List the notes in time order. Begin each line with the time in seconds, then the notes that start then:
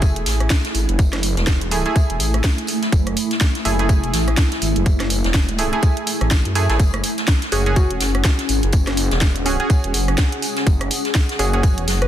Already playing: F#1 A3 E4 G#4
0.02 kick, closed hi-hat, tambourine
0.16 E1, closed hi-hat
0.26 A1, snare, open hi-hat, tambourine
0.40 cross-stick, closed hi-hat
0.50 kick, snare, closed hi-hat, tambourine
0.65 snare, closed hi-hat
0.75 G#1, open hi-hat, tambourine
0.89 F#1, closed hi-hat
0.99 kick, closed hi-hat, tambourine
1.13 F#1, cross-stick, snare, closed hi-hat
1.23 open hi-hat, tambourine
1.37 E1, snare, closed hi-hat
1.47 kick, snare, closed hi-hat, tambourine
1.61 closed hi-hat
1.71 A3 E4 G#4, open hi-hat, tambourine
1.86 A3 E4 G#4, closed hi-hat
1.96 kick, closed hi-hat, tambourine
2.10 E1, closed hi-hat
2.20 A1, open hi-hat, tambourine
2.34 cross-stick, closed hi-hat
2.44 kick, snare, closed hi-hat, tambourine
2.58 closed hi-hat
2.67 open hi-hat, tambourine
2.82 snare, closed hi-hat
2.92 F#1, kick, closed hi-hat, tambourine
3.07 cross-stick, closed hi-hat
3.17 open hi-hat, tambourine
3.31 snare, closed hi-hat
3.41 kick, snare, closed hi-hat, tambourine
3.55 snare, closed hi-hat
3.65 F#1 A3 E4 G#4, open hi-hat, tambourine
3.79 A3 E4 G#4, closed hi-hat
3.89 kick, closed hi-hat, tambourine
4.03 E1, closed hi-hat
4.13 A1, snare, open hi-hat, tambourine
4.27 cross-stick, closed hi-hat
4.37 kick, snare, closed hi-hat, tambourine
4.52 snare, closed hi-hat
4.62 G#1, open hi-hat, tambourine
4.76 F#1, closed hi-hat
4.86 kick, closed hi-hat, tambourine
5.00 F#1, cross-stick, snare, closed hi-hat
5.10 open hi-hat, tambourine
5.24 E1, snare, closed hi-hat
5.34 kick, snare, closed hi-hat, tambourine
5.49 closed hi-hat
5.58 A3 E4 G#4, open hi-hat, tambourine
5.73 A3 E4 G#4, closed hi-hat
5.82 kick, closed hi-hat, tambourine
5.97 closed hi-hat
6.07 open hi-hat, tambourine
6.21 A1, cross-stick, closed hi-hat
6.31 kick, snare, closed hi-hat, tambourine
6.45 F#2, closed hi-hat
6.55 A3 E4 G#4, open hi-hat, tambourine
6.70 A1 A3 E4 G#4, snare, closed hi-hat
6.79 F#1 C#4, kick, closed hi-hat, tambourine
6.94 cross-stick, closed hi-hat
7.03 open hi-hat, tambourine
7.18 G#4, snare, closed hi-hat
7.28 kick, snare, closed hi-hat, tambourine
7.42 snare, closed hi-hat
7.52 F#1 C#4 F#4 G#4, open hi-hat, tambourine
7.66 C#4 F#4 G#4, closed hi-hat
7.70 F#5
7.76 F#4, kick, closed hi-hat, tambourine
7.90 E1, closed hi-hat
8.00 F#1, snare, open hi-hat, tambourine
8.15 cross-stick, closed hi-hat
8.24 kick, snare, closed hi-hat, tambourine
8.39 snare, closed hi-hat
8.49 G#1, open hi-hat, tambourine
8.63 F#1, closed hi-hat
8.73 kick, closed hi-hat, tambourine
8.87 F#1, cross-stick, snare, closed hi-hat
8.97 open hi-hat, tambourine
9.11 E1, snare, closed hi-hat
9.21 kick, snare, closed hi-hat, tambourine
9.36 closed hi-hat
9.46 C#4 F#4 G#4, open hi-hat, tambourine
9.60 C#4 F#4 G#4, closed hi-hat
9.70 kick, closed hi-hat, tambourine
9.84 E1, closed hi-hat
9.94 F#1, open hi-hat, tambourine
10.08 cross-stick, closed hi-hat
10.17 kick, snare, closed hi-hat, tambourine
10.32 closed hi-hat
10.42 open hi-hat, tambourine
10.56 snare, closed hi-hat
10.67 F#1, kick, closed hi-hat, tambourine
10.81 cross-stick, closed hi-hat
10.91 open hi-hat, tambourine
11.05 snare, closed hi-hat
11.14 kick, snare, closed hi-hat, tambourine
11.29 snare, closed hi-hat
11.39 F#1 C#4 F#4 G#4, open hi-hat, tambourine
11.53 C#4 F#4 G#4, closed hi-hat
11.63 kick, closed hi-hat, tambourine
11.78 E1, closed hi-hat
11.88 F#1, snare, open hi-hat, tambourine
12.02 B4, cross-stick, closed hi-hat